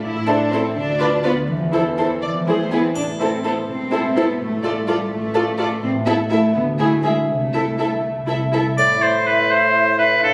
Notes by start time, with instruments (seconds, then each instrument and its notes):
Already playing: harp A4
0.03 double bass section A1, harp A2, cello section E4
0.27 harp C4, cello section D4, viola section E4, violin section A4 C5
0.51 cello section C4, harp E4 A4, viola section E4, violin section A4 C5
0.75 double bass section D2, harp D3, cello section D4
0.99 harp B3, viola section F4, violin section B4 D5
1.23 cello section B3, viola section F4, harp F4 B4, violin section B4 D5
1.48 double bass section E2, cello section E3, harp E3
1.55 cello section F3
1.62 cello section E3
1.72 viola section E4, harp E4, violin section A4 C5
1.97 harp E4 C5, viola section E4, violin section A4 C5
2.21 double bass section E2, harp E3, violin section D5
2.35 cello section F3
2.46 cello section G#3, harp E4, viola section E4, violin section G#4 C5
2.60 cello section A3
2.70 cello section B3, harp E4 B4, viola section E4, violin section G#4 B4
2.84 cello section C4
2.95 double bass section A1, harp A2, cello section D4, triangle
3.19 harp A3, cello section C4, viola section E4, violin section A4 C5
3.43 cello section B3, viola section E4, violin section A4 C5, harp C5
3.68 double bass section E1, cello section C4, harp A4
3.92 viola section E4, violin section A4 C5, harp E5
4.15 cello section B3, viola section E4, harp A4, violin section A4 C5
4.40 double bass section A1, harp A2, cello section A3
4.63 harp A3, viola section F4, violin section A4 D5
4.87 cello section G3, viola section F4, violin section A4 D5, harp D5
5.11 double bass section A1, cello section A3, harp A4
5.34 viola section F4, violin section A4 D5, harp F5
5.58 viola section F4, harp A4, violin section A4 D5
5.82 double bass section A1, harp A2, cello section C4
6.06 harp A3, cello section B3, viola section E4, violin section A4 E5
6.29 cello section A3, harp E4 E5, viola section E4, violin section A4 E5
6.54 double bass section D2, harp D3, cello section B3
6.78 harp G#3, cello section A3, viola section E4, violin section G#4 E5
7.03 cello section G#3, viola section E4, harp E4 E5, violin section G#4 E5
7.28 double bass section C2, harp C3, cello section A3
7.53 harp A3, viola section E4, violin section A4 E5
7.78 viola section E4, violin section A4 E5, harp E5
8.04 double bass section C2, harp A4
8.27 viola section E4, violin section A4 E5, harp E5
8.53 viola section E4, violin section A4 E5
8.78 bassoon A2, harp A2, clarinet E4, oboe D5, flute E5, triangle
9.02 harp A3, oboe C5
9.27 oboe B4, harp E5
9.51 harp A4, oboe C5
9.75 harp E5
9.99 harp E4, oboe B4
10.22 harp A2, clarinet D4, oboe A4, flute F5